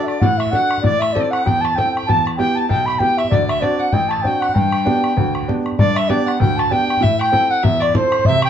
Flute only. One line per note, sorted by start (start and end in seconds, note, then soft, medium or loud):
0.03 0.21 D5 medium
0.03 0.08 E5 medium
0.20 0.39 F#5 medium
0.37 0.52 E5 medium
0.51 0.81 F#5 medium
0.81 1.01 D5 loud
0.99 1.14 E5 medium
1.12 1.32 D5 loud
1.31 1.45 F#5 medium
1.44 1.62 G5 loud
1.61 1.77 A5 medium
1.75 1.91 G5 loud
1.92 1.98 G5 medium
2.06 2.23 A5 loud
2.37 2.57 G5 medium
2.55 2.68 A5 medium
2.69 2.87 G5 medium
2.86 3.00 B5 medium
2.99 3.19 G5 loud
3.17 3.29 E5 medium
3.29 3.46 D5 medium
3.48 3.62 E5 medium
3.60 3.77 D5 medium
3.78 3.94 F#5 medium
3.93 4.10 G5 loud
4.09 4.23 A5 loud
4.22 4.42 G5 medium
4.40 4.55 F#5 medium
4.53 5.47 G5 medium
5.78 5.97 D5 medium
5.96 6.10 E5 medium
6.08 6.25 D5 medium
6.25 6.41 F#5 medium
6.39 6.58 G5 medium
6.57 6.73 A5 medium
6.71 6.88 G5 loud
6.88 7.04 G5 medium
7.03 7.19 E5 loud
7.20 7.52 G5 loud
7.51 7.66 F#5 medium
7.64 7.84 E5 medium
7.82 7.95 D5 medium
7.96 8.28 C5 loud
8.26 8.43 E5 loud
8.44 8.50 G5 medium